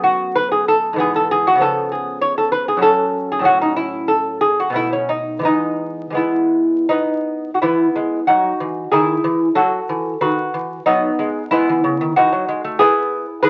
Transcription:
0.00 0.91 F#2 medium
0.00 0.92 A3 medium
0.00 0.93 B3 medium
0.00 0.34 F#4 medium
0.35 0.51 B4 medium
0.52 0.67 G#4 medium
0.68 0.98 A4 medium
0.93 1.56 G#2 medium
0.93 1.55 E3 medium
0.98 1.59 B3 medium
0.98 1.15 G#4 medium
1.16 1.31 A4 medium
1.31 1.46 G#4 medium
1.47 1.62 F#4 medium
1.55 2.78 C#3 medium
1.55 2.78 F3 soft
1.60 2.81 B3 medium
1.60 1.91 A4 medium
1.92 2.21 G#4 medium
2.21 2.37 C#5 medium
2.38 2.51 A4 medium
2.52 2.68 B4 medium
2.68 2.82 G#4 medium
2.77 3.41 F#2 medium
2.77 3.40 F#3 medium
2.81 3.42 C#4 soft
2.81 3.29 A4 medium
3.32 3.47 G#4 medium
3.39 4.68 A2 medium
3.39 4.69 F#3 medium
3.44 4.70 C#4 soft
3.44 3.61 F#4 medium
3.61 3.76 D#4 medium
3.76 4.08 E4 medium
4.08 4.40 A4 medium
4.41 4.58 G#4 medium
4.60 4.75 F#4 medium
4.70 5.40 B2 medium
4.70 5.41 A3 soft
4.74 4.92 B3 soft
4.74 4.93 E4 medium
4.93 5.10 C#4 medium
5.09 5.43 D#4 medium
5.39 6.09 E3 medium
5.39 6.11 G#3 soft
5.43 6.13 B3 soft
5.43 6.15 D#4 medium
6.10 7.53 E3 soft
6.10 7.54 G#3 soft
6.15 6.89 B3 soft
6.15 6.89 E4 medium
6.89 7.49 B3 medium
6.89 7.50 D#4 medium
7.54 7.61 F#4 soft
7.62 7.86 E3 medium
7.62 8.24 B3 medium
7.62 8.25 E4 medium
7.96 8.19 G#3 medium
8.27 8.52 F#3 medium
8.27 8.89 D#4 soft
8.27 8.90 F#4 medium
8.60 8.83 E3 medium
8.92 9.15 D#3 medium
8.92 9.52 E4 medium
8.92 9.53 G#4 medium
9.24 9.47 E3 medium
9.55 9.79 F#3 medium
9.55 10.18 F#4 medium
9.55 10.18 A4 medium
9.89 10.13 E3 medium
10.21 10.44 D#3 medium
10.21 10.82 F#4 medium
10.21 10.83 B4 medium
10.54 10.77 E3 medium
10.86 11.10 F#3 medium
10.86 11.47 B3 medium
10.86 11.49 D#4 medium
11.19 11.42 G#3 medium
11.51 11.67 G#3 medium
11.51 12.12 B3 medium
11.51 12.13 E4 medium
11.69 11.84 E3 medium
11.84 11.99 C#3 medium
12.01 12.16 D#3 medium
12.16 12.32 E3 medium
12.16 12.77 D#4 medium
12.16 12.78 F#4 medium
12.33 12.47 F#3 medium
12.48 12.63 G#3 medium
12.64 12.79 A3 medium
12.79 13.26 B3 medium
12.79 13.40 E4 medium
12.79 13.40 G#4 loud
13.43 13.50 E3 medium
13.43 13.50 G#4 medium
13.43 13.50 B4 loud

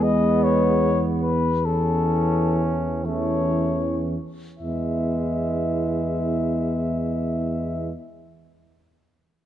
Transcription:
0.00 4.16 E2 medium
0.00 1.35 G#3 medium
0.00 1.49 B3 medium
0.00 0.45 D#5 medium
0.05 1.33 B3 medium
0.43 1.05 C#5 medium
1.22 1.67 B4 medium
1.65 3.01 E3 soft
1.65 3.06 C#4 medium
1.65 3.02 C#4 soft
1.65 2.70 A4 medium
3.04 4.17 E3 soft
3.04 3.82 A3 soft
3.04 4.16 C#4 soft
3.04 4.05 C#5 medium
4.59 7.92 E2 soft
4.59 7.91 G#3 soft
4.59 7.91 B3 soft
4.59 7.90 E4 soft
4.59 7.90 E5 soft

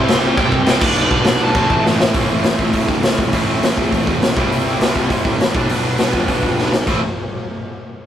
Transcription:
0.00 0.66 C3 medium
0.00 0.67 G3 loud
0.00 0.68 C4 loud
0.00 0.68 E4 loud
0.00 0.40 C5 medium
0.08 0.19 C2 loud
0.08 snare loud
0.08 crash medium
0.24 0.34 C2 loud
0.37 0.48 C2 medium
0.37 0.84 G5 loud
0.37 kick loud
0.37 crash medium
0.52 0.62 C2 loud
0.52 kick medium
0.66 0.78 C2 loud
0.66 0.81 C3 medium
0.66 0.81 G3 medium
0.66 0.82 C4 medium
0.66 0.83 E4 loud
0.66 snare loud
0.66 crash medium
0.81 0.91 B1 medium
0.81 1.54 B2 loud
0.81 1.55 G3 medium
0.81 1.56 B3 loud
0.81 1.56 D4 loud
0.81 0.96 D5 medium
0.81 kick loud
0.81 crash loud
0.96 1.07 B1 loud
0.96 1.43 D5 medium
0.96 crash medium
1.11 1.21 B1 loud
1.11 kick medium
1.25 1.37 B1 medium
1.25 snare loud
1.25 crash medium
1.42 1.51 B1 medium
1.42 1.83 A5 medium
1.55 1.65 A1 loud
1.55 2.13 A2 medium
1.55 2.14 E3 loud
1.55 2.14 A3 loud
1.55 2.15 C4 medium
1.55 2.15 E4 loud
1.55 kick loud
1.55 crash medium
1.70 1.80 A1 medium
1.70 kick medium
1.85 2.05 A1 loud
1.85 snare medium
2.00 snare loud
2.14 2.28 A1 medium
2.14 3.31 A2 medium
2.14 3.33 E3 loud
2.14 3.33 A3 medium
2.14 3.35 C4 medium
2.14 3.35 E4 medium
2.14 kick loud
2.14 open hi-hat medium
2.31 2.44 A1 medium
2.44 2.58 A1 medium
2.44 snare loud
2.44 open hi-hat medium
2.59 2.72 A1 medium
2.59 kick medium
2.73 2.87 A2 medium
2.73 kick medium
2.73 open hi-hat medium
2.88 3.01 G2 medium
2.88 kick medium
3.03 3.30 C2 loud
3.03 snare loud
3.03 open hi-hat medium
3.18 kick medium
3.33 3.59 A1 loud
3.33 4.36 A2 medium
3.33 4.36 E3 medium
3.33 4.37 A3 medium
3.33 4.37 C4 medium
3.33 4.37 E4 medium
3.33 kick medium
3.33 open hi-hat medium
3.62 3.75 A1 medium
3.62 snare loud
3.62 open hi-hat medium
3.77 3.91 E2 medium
3.77 kick medium
3.92 4.06 A1 medium
3.92 kick medium
3.92 open hi-hat soft
4.06 4.20 E2 medium
4.06 kick medium
4.21 4.37 B1 medium
4.21 snare loud
4.21 open hi-hat soft
4.37 4.50 C2 medium
4.37 5.54 C3 loud
4.37 5.54 G3 medium
4.37 5.56 C4 medium
4.37 5.56 E4 loud
4.37 kick loud
4.51 4.64 C2 medium
4.51 open hi-hat medium
4.64 4.78 C2 medium
4.80 4.93 C2 medium
4.80 snare loud
4.80 open hi-hat medium
4.95 5.08 C2 medium
4.95 kick medium
5.10 5.23 C3 medium
5.10 kick medium
5.10 open hi-hat medium
5.25 5.38 A2 medium
5.25 kick medium
5.40 5.54 A1 medium
5.40 snare loud
5.40 open hi-hat medium
5.54 5.68 B1 medium
5.54 6.72 B2 medium
5.54 6.73 G3 medium
5.54 6.73 B3 loud
5.54 6.74 D4 medium
5.54 kick loud
5.69 5.96 B1 medium
5.69 open hi-hat medium
5.98 6.13 B1 medium
5.98 snare loud
5.98 open hi-hat medium
6.13 6.27 F2 medium
6.13 kick medium
6.28 6.42 B1 medium
6.28 kick medium
6.28 open hi-hat medium
6.43 6.57 F2 medium
6.43 kick medium
6.58 6.86 B1 medium
6.58 snare medium
6.72 snare medium
6.86 7.01 A1 medium
6.86 7.00 A2 medium
6.86 7.00 E3 medium
6.86 7.00 A3 medium
6.86 7.00 C4 loud
6.86 7.01 E4 medium
6.86 kick loud
6.86 crash medium

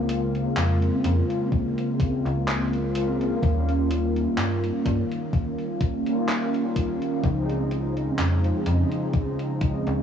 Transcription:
0.00 0.45 C#2 loud
0.00 2.89 C#3 medium
0.00 2.90 G#3 medium
0.00 2.90 A#3 medium
0.00 2.90 C4 medium
0.00 2.91 F4 medium
0.09 closed hi-hat medium
0.35 closed hi-hat soft
0.57 0.90 F2 medium
0.57 clap loud
0.57 closed hi-hat medium
0.82 closed hi-hat soft
1.04 1.21 F2 medium
1.04 closed hi-hat medium
1.30 closed hi-hat soft
1.52 kick loud
1.52 closed hi-hat medium
1.78 closed hi-hat soft
2.00 kick loud
2.00 closed hi-hat medium
2.25 3.31 C#2 loud
2.25 closed hi-hat soft
2.48 clap loud
2.48 closed hi-hat medium
2.73 closed hi-hat soft
2.94 3.22 C#3 medium
2.94 3.22 G#3 medium
2.94 3.22 A#3 medium
2.94 3.23 C4 medium
2.94 3.23 F4 medium
2.94 closed hi-hat loud
3.21 closed hi-hat soft
3.41 4.26 D#2 loud
3.41 6.01 D#3 medium
3.41 6.01 G3 medium
3.41 6.01 A#3 medium
3.41 6.02 C#4 medium
3.41 6.02 F4 medium
3.41 kick loud
3.41 closed hi-hat medium
3.69 closed hi-hat soft
3.91 closed hi-hat medium
4.16 closed hi-hat soft
4.38 4.71 G2 medium
4.38 clap loud
4.38 closed hi-hat medium
4.64 closed hi-hat soft
4.86 5.03 G2 medium
4.86 kick medium
4.86 closed hi-hat medium
5.12 closed hi-hat soft
5.33 kick loud
5.33 closed hi-hat medium
5.59 closed hi-hat soft
5.81 kick loud
5.81 closed hi-hat medium
6.06 7.18 D#3 medium
6.06 7.18 G3 medium
6.06 7.19 A#3 medium
6.06 7.19 C#4 medium
6.06 7.19 F4 loud
6.06 closed hi-hat soft
6.29 clap loud
6.29 closed hi-hat medium
6.54 closed hi-hat soft
6.76 kick medium
6.76 closed hi-hat medium
7.02 closed hi-hat soft
7.22 8.07 C#2 loud
7.22 10.03 C#3 medium
7.22 10.03 F3 medium
7.22 10.03 G#3 medium
7.22 10.03 C4 medium
7.22 10.03 D#4 medium
7.22 kick loud
7.22 closed hi-hat medium
7.49 closed hi-hat soft
7.71 closed hi-hat medium
7.97 closed hi-hat soft
8.19 8.51 F2 medium
8.19 clap loud
8.19 closed hi-hat medium
8.44 closed hi-hat soft
8.66 8.83 F2 medium
8.66 closed hi-hat medium
8.92 closed hi-hat soft
9.14 kick loud
9.14 closed hi-hat medium
9.39 closed hi-hat soft
9.61 kick loud
9.61 closed hi-hat medium
9.87 10.03 C#2 loud
9.87 closed hi-hat soft

